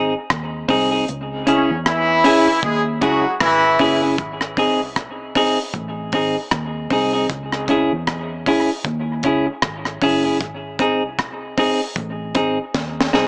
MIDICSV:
0, 0, Header, 1, 6, 480
1, 0, Start_track
1, 0, Key_signature, 4, "minor"
1, 0, Tempo, 777202
1, 666, Time_signature, 4, 2, 24, 8
1, 8198, End_track
2, 0, Start_track
2, 0, Title_t, "Clean electric guitar"
2, 0, Program_c, 0, 27
2, 0, Note_on_c, 0, 60, 87
2, 0, Note_on_c, 0, 63, 88
2, 0, Note_on_c, 0, 68, 88
2, 80, Note_off_c, 0, 60, 0
2, 83, Note_off_c, 0, 63, 0
2, 85, Note_off_c, 0, 68, 0
2, 423, Note_on_c, 0, 60, 94
2, 429, Note_on_c, 0, 63, 81
2, 434, Note_on_c, 0, 68, 89
2, 556, Note_off_c, 0, 68, 0
2, 560, Note_off_c, 0, 60, 0
2, 563, Note_off_c, 0, 63, 0
2, 564, Note_on_c, 0, 68, 69
2, 569, Note_on_c, 0, 63, 64
2, 573, Note_on_c, 0, 60, 60
2, 641, Note_off_c, 0, 68, 0
2, 644, Note_off_c, 0, 63, 0
2, 646, Note_off_c, 0, 60, 0
2, 906, Note_on_c, 0, 61, 78
2, 913, Note_on_c, 0, 64, 81
2, 916, Note_on_c, 0, 68, 79
2, 1042, Note_off_c, 0, 61, 0
2, 1045, Note_off_c, 0, 64, 0
2, 1047, Note_off_c, 0, 68, 0
2, 1384, Note_on_c, 0, 61, 83
2, 1389, Note_on_c, 0, 64, 95
2, 1395, Note_on_c, 0, 68, 95
2, 1521, Note_off_c, 0, 61, 0
2, 1523, Note_off_c, 0, 64, 0
2, 1526, Note_off_c, 0, 68, 0
2, 1861, Note_on_c, 0, 61, 74
2, 1867, Note_on_c, 0, 64, 81
2, 1871, Note_on_c, 0, 68, 91
2, 1999, Note_off_c, 0, 61, 0
2, 2002, Note_off_c, 0, 64, 0
2, 2004, Note_off_c, 0, 68, 0
2, 2343, Note_on_c, 0, 61, 84
2, 2348, Note_on_c, 0, 64, 92
2, 2353, Note_on_c, 0, 68, 93
2, 2478, Note_off_c, 0, 68, 0
2, 2480, Note_off_c, 0, 61, 0
2, 2483, Note_off_c, 0, 64, 0
2, 2485, Note_on_c, 0, 68, 59
2, 2490, Note_on_c, 0, 64, 55
2, 2494, Note_on_c, 0, 61, 49
2, 2562, Note_off_c, 0, 68, 0
2, 2564, Note_off_c, 0, 64, 0
2, 2566, Note_off_c, 0, 61, 0
2, 2826, Note_on_c, 0, 60, 80
2, 2830, Note_on_c, 0, 63, 75
2, 2835, Note_on_c, 0, 68, 94
2, 2962, Note_off_c, 0, 60, 0
2, 2964, Note_off_c, 0, 63, 0
2, 2967, Note_off_c, 0, 68, 0
2, 3309, Note_on_c, 0, 60, 84
2, 3313, Note_on_c, 0, 63, 94
2, 3316, Note_on_c, 0, 68, 96
2, 3443, Note_off_c, 0, 60, 0
2, 3445, Note_off_c, 0, 63, 0
2, 3447, Note_off_c, 0, 68, 0
2, 3787, Note_on_c, 0, 60, 80
2, 3795, Note_on_c, 0, 63, 84
2, 3797, Note_on_c, 0, 68, 85
2, 3923, Note_off_c, 0, 60, 0
2, 3926, Note_off_c, 0, 63, 0
2, 3928, Note_off_c, 0, 68, 0
2, 4265, Note_on_c, 0, 60, 84
2, 4273, Note_on_c, 0, 63, 85
2, 4279, Note_on_c, 0, 68, 91
2, 4398, Note_off_c, 0, 68, 0
2, 4401, Note_off_c, 0, 60, 0
2, 4405, Note_off_c, 0, 63, 0
2, 4406, Note_on_c, 0, 68, 60
2, 4414, Note_on_c, 0, 63, 62
2, 4418, Note_on_c, 0, 60, 52
2, 4482, Note_off_c, 0, 68, 0
2, 4487, Note_off_c, 0, 63, 0
2, 4488, Note_off_c, 0, 60, 0
2, 4748, Note_on_c, 0, 61, 80
2, 4755, Note_on_c, 0, 64, 92
2, 4760, Note_on_c, 0, 68, 108
2, 4883, Note_off_c, 0, 61, 0
2, 4887, Note_off_c, 0, 64, 0
2, 4889, Note_off_c, 0, 68, 0
2, 5232, Note_on_c, 0, 61, 85
2, 5237, Note_on_c, 0, 64, 107
2, 5241, Note_on_c, 0, 68, 107
2, 5365, Note_off_c, 0, 61, 0
2, 5368, Note_off_c, 0, 64, 0
2, 5370, Note_off_c, 0, 68, 0
2, 5710, Note_on_c, 0, 61, 76
2, 5715, Note_on_c, 0, 64, 80
2, 5721, Note_on_c, 0, 68, 75
2, 5841, Note_off_c, 0, 68, 0
2, 5844, Note_off_c, 0, 61, 0
2, 5847, Note_off_c, 0, 64, 0
2, 6189, Note_on_c, 0, 61, 92
2, 6196, Note_on_c, 0, 64, 88
2, 6197, Note_on_c, 0, 68, 86
2, 6319, Note_off_c, 0, 68, 0
2, 6324, Note_off_c, 0, 61, 0
2, 6325, Note_off_c, 0, 64, 0
2, 6327, Note_on_c, 0, 68, 62
2, 6333, Note_on_c, 0, 64, 51
2, 6337, Note_on_c, 0, 61, 42
2, 6403, Note_off_c, 0, 68, 0
2, 6406, Note_off_c, 0, 64, 0
2, 6409, Note_off_c, 0, 61, 0
2, 6667, Note_on_c, 0, 60, 77
2, 6674, Note_on_c, 0, 63, 78
2, 6680, Note_on_c, 0, 68, 87
2, 6803, Note_off_c, 0, 60, 0
2, 6807, Note_off_c, 0, 63, 0
2, 6810, Note_off_c, 0, 68, 0
2, 7149, Note_on_c, 0, 60, 88
2, 7154, Note_on_c, 0, 63, 81
2, 7161, Note_on_c, 0, 68, 88
2, 7285, Note_off_c, 0, 60, 0
2, 7287, Note_off_c, 0, 63, 0
2, 7291, Note_off_c, 0, 68, 0
2, 7627, Note_on_c, 0, 60, 88
2, 7632, Note_on_c, 0, 63, 84
2, 7638, Note_on_c, 0, 68, 77
2, 7764, Note_off_c, 0, 60, 0
2, 7766, Note_off_c, 0, 63, 0
2, 7770, Note_off_c, 0, 68, 0
2, 8110, Note_on_c, 0, 60, 86
2, 8115, Note_on_c, 0, 63, 79
2, 8120, Note_on_c, 0, 68, 94
2, 8198, Note_off_c, 0, 60, 0
2, 8198, Note_off_c, 0, 63, 0
2, 8198, Note_off_c, 0, 68, 0
2, 8198, End_track
3, 0, Start_track
3, 0, Title_t, "Horn section"
3, 0, Program_c, 1, 61
3, 904, Note_on_c, 1, 49, 81
3, 904, Note_on_c, 1, 61, 83
3, 1096, Note_off_c, 1, 61, 0
3, 1097, Note_off_c, 1, 49, 0
3, 1141, Note_on_c, 1, 52, 98
3, 1142, Note_on_c, 1, 64, 117
3, 1598, Note_off_c, 1, 52, 0
3, 1599, Note_off_c, 1, 64, 0
3, 1624, Note_on_c, 1, 56, 89
3, 1625, Note_on_c, 1, 68, 101
3, 1736, Note_off_c, 1, 56, 0
3, 1737, Note_off_c, 1, 68, 0
3, 1861, Note_on_c, 1, 54, 78
3, 1861, Note_on_c, 1, 66, 88
3, 2055, Note_off_c, 1, 54, 0
3, 2055, Note_off_c, 1, 66, 0
3, 2104, Note_on_c, 1, 64, 115
3, 2105, Note_on_c, 1, 52, 109
3, 2462, Note_off_c, 1, 52, 0
3, 2462, Note_off_c, 1, 64, 0
3, 8198, End_track
4, 0, Start_track
4, 0, Title_t, "Fingered electric bass"
4, 0, Program_c, 2, 33
4, 0, Note_on_c, 2, 32, 91
4, 81, Note_off_c, 2, 32, 0
4, 193, Note_on_c, 2, 39, 78
4, 419, Note_off_c, 2, 39, 0
4, 429, Note_on_c, 2, 36, 82
4, 657, Note_off_c, 2, 36, 0
4, 672, Note_on_c, 2, 37, 102
4, 1032, Note_off_c, 2, 37, 0
4, 1052, Note_on_c, 2, 40, 97
4, 1374, Note_off_c, 2, 40, 0
4, 1629, Note_on_c, 2, 39, 88
4, 1857, Note_off_c, 2, 39, 0
4, 1870, Note_on_c, 2, 37, 95
4, 2001, Note_off_c, 2, 37, 0
4, 2112, Note_on_c, 2, 32, 94
4, 2338, Note_off_c, 2, 32, 0
4, 2348, Note_on_c, 2, 30, 89
4, 2588, Note_off_c, 2, 30, 0
4, 2588, Note_on_c, 2, 32, 95
4, 2973, Note_off_c, 2, 32, 0
4, 2973, Note_on_c, 2, 36, 88
4, 3294, Note_off_c, 2, 36, 0
4, 3549, Note_on_c, 2, 33, 89
4, 3777, Note_off_c, 2, 33, 0
4, 3790, Note_on_c, 2, 32, 93
4, 3921, Note_off_c, 2, 32, 0
4, 4033, Note_on_c, 2, 39, 92
4, 4259, Note_off_c, 2, 39, 0
4, 4268, Note_on_c, 2, 36, 94
4, 4496, Note_off_c, 2, 36, 0
4, 4511, Note_on_c, 2, 37, 109
4, 4871, Note_off_c, 2, 37, 0
4, 4895, Note_on_c, 2, 40, 93
4, 5216, Note_off_c, 2, 40, 0
4, 5468, Note_on_c, 2, 39, 103
4, 5697, Note_off_c, 2, 39, 0
4, 5711, Note_on_c, 2, 37, 104
4, 5842, Note_off_c, 2, 37, 0
4, 5952, Note_on_c, 2, 32, 92
4, 6179, Note_off_c, 2, 32, 0
4, 6189, Note_on_c, 2, 30, 90
4, 6433, Note_off_c, 2, 30, 0
4, 6433, Note_on_c, 2, 32, 95
4, 6818, Note_off_c, 2, 32, 0
4, 6818, Note_on_c, 2, 36, 87
4, 7139, Note_off_c, 2, 36, 0
4, 7390, Note_on_c, 2, 33, 95
4, 7619, Note_off_c, 2, 33, 0
4, 7634, Note_on_c, 2, 32, 94
4, 7765, Note_off_c, 2, 32, 0
4, 7877, Note_on_c, 2, 39, 87
4, 8103, Note_off_c, 2, 39, 0
4, 8124, Note_on_c, 2, 36, 88
4, 8198, Note_off_c, 2, 36, 0
4, 8198, End_track
5, 0, Start_track
5, 0, Title_t, "Muted clean electric guitar strokes"
5, 5849, Note_on_c, 9, 29, 49
5, 5910, Note_off_c, 9, 29, 0
5, 8198, End_track
6, 0, Start_track
6, 0, Title_t, "Drums"
6, 186, Note_on_c, 9, 37, 112
6, 187, Note_on_c, 9, 36, 122
6, 248, Note_off_c, 9, 37, 0
6, 249, Note_off_c, 9, 36, 0
6, 424, Note_on_c, 9, 36, 82
6, 426, Note_on_c, 9, 46, 77
6, 486, Note_off_c, 9, 36, 0
6, 488, Note_off_c, 9, 46, 0
6, 666, Note_on_c, 9, 44, 65
6, 728, Note_off_c, 9, 44, 0
6, 908, Note_on_c, 9, 42, 76
6, 969, Note_off_c, 9, 42, 0
6, 1149, Note_on_c, 9, 37, 112
6, 1210, Note_off_c, 9, 37, 0
6, 1385, Note_on_c, 9, 46, 90
6, 1447, Note_off_c, 9, 46, 0
6, 1623, Note_on_c, 9, 36, 114
6, 1625, Note_on_c, 9, 44, 56
6, 1685, Note_off_c, 9, 36, 0
6, 1687, Note_off_c, 9, 44, 0
6, 1863, Note_on_c, 9, 42, 76
6, 1864, Note_on_c, 9, 36, 100
6, 1925, Note_off_c, 9, 42, 0
6, 1926, Note_off_c, 9, 36, 0
6, 2103, Note_on_c, 9, 37, 107
6, 2106, Note_on_c, 9, 36, 127
6, 2165, Note_off_c, 9, 37, 0
6, 2168, Note_off_c, 9, 36, 0
6, 2342, Note_on_c, 9, 46, 79
6, 2343, Note_on_c, 9, 36, 80
6, 2403, Note_off_c, 9, 46, 0
6, 2405, Note_off_c, 9, 36, 0
6, 2581, Note_on_c, 9, 44, 59
6, 2584, Note_on_c, 9, 36, 106
6, 2643, Note_off_c, 9, 44, 0
6, 2646, Note_off_c, 9, 36, 0
6, 2723, Note_on_c, 9, 37, 69
6, 2784, Note_off_c, 9, 37, 0
6, 2822, Note_on_c, 9, 36, 99
6, 2825, Note_on_c, 9, 46, 55
6, 2884, Note_off_c, 9, 36, 0
6, 2887, Note_off_c, 9, 46, 0
6, 3063, Note_on_c, 9, 44, 61
6, 3065, Note_on_c, 9, 36, 91
6, 3065, Note_on_c, 9, 37, 93
6, 3124, Note_off_c, 9, 44, 0
6, 3126, Note_off_c, 9, 37, 0
6, 3127, Note_off_c, 9, 36, 0
6, 3306, Note_on_c, 9, 46, 88
6, 3307, Note_on_c, 9, 36, 87
6, 3368, Note_off_c, 9, 36, 0
6, 3368, Note_off_c, 9, 46, 0
6, 3543, Note_on_c, 9, 36, 108
6, 3544, Note_on_c, 9, 44, 56
6, 3605, Note_off_c, 9, 36, 0
6, 3606, Note_off_c, 9, 44, 0
6, 3781, Note_on_c, 9, 46, 54
6, 3785, Note_on_c, 9, 36, 99
6, 3842, Note_off_c, 9, 46, 0
6, 3846, Note_off_c, 9, 36, 0
6, 4022, Note_on_c, 9, 44, 70
6, 4023, Note_on_c, 9, 37, 106
6, 4026, Note_on_c, 9, 36, 113
6, 4083, Note_off_c, 9, 44, 0
6, 4085, Note_off_c, 9, 37, 0
6, 4088, Note_off_c, 9, 36, 0
6, 4264, Note_on_c, 9, 36, 91
6, 4265, Note_on_c, 9, 46, 78
6, 4326, Note_off_c, 9, 36, 0
6, 4326, Note_off_c, 9, 46, 0
6, 4506, Note_on_c, 9, 36, 108
6, 4506, Note_on_c, 9, 44, 60
6, 4567, Note_off_c, 9, 44, 0
6, 4568, Note_off_c, 9, 36, 0
6, 4647, Note_on_c, 9, 37, 67
6, 4709, Note_off_c, 9, 37, 0
6, 4743, Note_on_c, 9, 36, 100
6, 4747, Note_on_c, 9, 42, 70
6, 4805, Note_off_c, 9, 36, 0
6, 4809, Note_off_c, 9, 42, 0
6, 4986, Note_on_c, 9, 36, 99
6, 4987, Note_on_c, 9, 37, 105
6, 5048, Note_off_c, 9, 36, 0
6, 5049, Note_off_c, 9, 37, 0
6, 5227, Note_on_c, 9, 36, 95
6, 5227, Note_on_c, 9, 46, 80
6, 5289, Note_off_c, 9, 36, 0
6, 5289, Note_off_c, 9, 46, 0
6, 5463, Note_on_c, 9, 36, 122
6, 5464, Note_on_c, 9, 44, 64
6, 5525, Note_off_c, 9, 36, 0
6, 5526, Note_off_c, 9, 44, 0
6, 5701, Note_on_c, 9, 42, 77
6, 5705, Note_on_c, 9, 36, 97
6, 5762, Note_off_c, 9, 42, 0
6, 5767, Note_off_c, 9, 36, 0
6, 5943, Note_on_c, 9, 37, 113
6, 5948, Note_on_c, 9, 36, 118
6, 6005, Note_off_c, 9, 37, 0
6, 6010, Note_off_c, 9, 36, 0
6, 6085, Note_on_c, 9, 37, 62
6, 6147, Note_off_c, 9, 37, 0
6, 6185, Note_on_c, 9, 36, 86
6, 6187, Note_on_c, 9, 46, 81
6, 6247, Note_off_c, 9, 36, 0
6, 6249, Note_off_c, 9, 46, 0
6, 6427, Note_on_c, 9, 36, 107
6, 6427, Note_on_c, 9, 44, 63
6, 6488, Note_off_c, 9, 36, 0
6, 6488, Note_off_c, 9, 44, 0
6, 6665, Note_on_c, 9, 36, 103
6, 6668, Note_on_c, 9, 42, 72
6, 6727, Note_off_c, 9, 36, 0
6, 6730, Note_off_c, 9, 42, 0
6, 6909, Note_on_c, 9, 36, 103
6, 6912, Note_on_c, 9, 37, 102
6, 6970, Note_off_c, 9, 36, 0
6, 6974, Note_off_c, 9, 37, 0
6, 7150, Note_on_c, 9, 36, 89
6, 7150, Note_on_c, 9, 46, 92
6, 7211, Note_off_c, 9, 36, 0
6, 7211, Note_off_c, 9, 46, 0
6, 7385, Note_on_c, 9, 44, 61
6, 7386, Note_on_c, 9, 36, 106
6, 7447, Note_off_c, 9, 44, 0
6, 7448, Note_off_c, 9, 36, 0
6, 7626, Note_on_c, 9, 42, 73
6, 7629, Note_on_c, 9, 36, 102
6, 7687, Note_off_c, 9, 42, 0
6, 7690, Note_off_c, 9, 36, 0
6, 7871, Note_on_c, 9, 38, 57
6, 7872, Note_on_c, 9, 36, 123
6, 7933, Note_off_c, 9, 38, 0
6, 7934, Note_off_c, 9, 36, 0
6, 8032, Note_on_c, 9, 38, 76
6, 8094, Note_off_c, 9, 38, 0
6, 8114, Note_on_c, 9, 38, 71
6, 8176, Note_off_c, 9, 38, 0
6, 8198, End_track
0, 0, End_of_file